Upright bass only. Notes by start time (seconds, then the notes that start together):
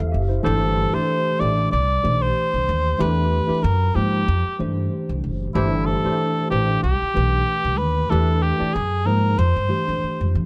0.00 E2
0.14 F#1
0.46 G1
1.41 A1
1.73 C2
2.05 B1
2.54 C2
2.69 D#2
3.00 E2
3.50 muted upright bass stroke
3.64 F#2
3.96 G#2
4.28 F2
4.46 muted upright bass stroke
4.60 G2
5.09 C2
5.24 F#1
5.55 G1
6.05 muted upright bass stroke
6.52 A1
6.84 C2
7.02 muted upright bass stroke
7.16 B1
7.65 C2
7.80 D#2
8.12 E2
8.61 muted upright bass stroke
8.76 F#2
9.07 G#2
9.39 F2
9.56 G2
9.88 F2
10.03 muted upright bass stroke
10.21 F2
10.35 F3